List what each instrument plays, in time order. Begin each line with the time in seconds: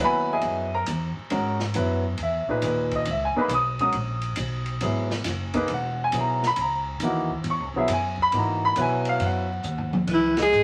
0.00 upright bass D#2, grand piano F#3 B3 E4 B4
0.04 grand piano F#5 G#5 B5
0.32 grand piano G#4 D#5 E5 G#5
0.41 upright bass F#2, ride
0.74 grand piano A#4 A#5
0.86 upright bass E2, hi-hat pedal, ride
1.17 muted upright bass stroke
1.30 upright bass G#2, grand piano G#3 C#4 F#4 A#4, ride
1.60 snare
1.74 upright bass F#2, grand piano F#3 B3 E4 B4, hi-hat pedal, ride
2.18 upright bass E2, ride
2.23 grand piano E5
2.47 grand piano A#2 D#4 G#4 B4, muted upright bass stroke, kick
2.62 upright bass D#2, hi-hat pedal, ride
2.67 grand piano B4
2.91 kick, ride
2.96 grand piano D#5
3.05 upright bass C#2, ride
3.11 grand piano E5
3.25 grand piano G#5
3.35 grand piano A#3 D#4 G#4 B4, muted upright bass stroke
3.41 grand piano B5
3.48 upright bass B1, hi-hat pedal, ride
3.54 grand piano D#6
3.79 grand piano G#3 C#4 F#4 A#4 D#6, kick, ride
3.92 upright bass A#1, ride
4.22 ride
4.36 upright bass B1, hi-hat pedal, ride
4.66 ride
4.81 upright bass G#1, grand piano F#3 B3 E4 G#4, ride
5.11 snare
5.24 upright bass F#1, snare, hi-hat pedal, ride
5.54 grand piano A#3 D#4 G#4 B4, kick, ride
5.68 upright bass E1, ride
5.74 grand piano F#5
6.04 grand piano G#5
6.12 upright bass B1, grand piano F#3 B3 E4 G#4, hi-hat pedal, ride
6.20 grand piano A#5
6.43 grand piano B5, snare
6.56 upright bass C#2, ride
6.61 grand piano A#5
7.00 upright bass D#2, grand piano E3 A#3, hi-hat pedal, ride
7.04 grand piano D#4 F#4
7.30 kick
7.44 upright bass E2, ride
7.50 grand piano C#6
7.60 upright bass C#2
7.74 upright bass B1, grand piano F#3 B3 E4 G#4 E5
7.88 upright bass F#2, hi-hat pedal, ride
7.93 grand piano G#5
8.18 kick
8.22 grand piano B5
8.32 upright bass G#2, grand piano E3 A#3 D#4 F#4, ride
8.38 grand piano A#5
8.65 grand piano B5
8.76 upright bass B2, grand piano F#3 B3 E4 B4, hi-hat pedal, ride
8.82 grand piano G#5
9.05 grand piano F5, ride
9.20 upright bass F#2, ride
9.26 grand piano F#5
9.63 upright bass D#2, hi-hat pedal
9.78 floor tom
9.93 mid tom
10.07 upright bass C#2, trombone E3, kick, crash
10.14 alto saxophone E4
10.37 trombone G#3, snare, ride
10.42 alto saxophone G#4
10.52 upright bass G#1, hi-hat pedal